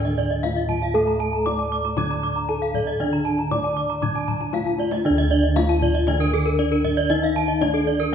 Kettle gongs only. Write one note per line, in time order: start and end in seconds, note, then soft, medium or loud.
0.00 1.41 A2 medium
0.43 0.51 D#4 soft
0.94 2.44 A4 medium
1.47 1.55 D#4 soft
1.97 3.47 D3 medium
2.49 2.57 D#4 soft
3.01 4.50 D4 medium
3.51 3.59 D#4 soft
4.02 5.52 D3 medium
4.54 4.62 D#4 soft
5.05 6.55 D4 medium
5.10 8.12 D2 loud
5.57 5.65 D#4 soft
6.59 6.67 D#4 soft
7.10 7.60 D#4 medium
7.61 7.69 D#4 soft